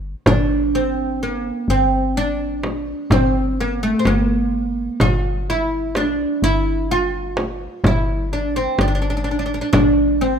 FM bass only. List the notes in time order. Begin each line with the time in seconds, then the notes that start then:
Already playing: G1
0.26 G1
1.68 G1
3.10 G1
4.05 G1
5.00 G1
6.42 G1
7.84 G1
8.78 G1
9.73 G1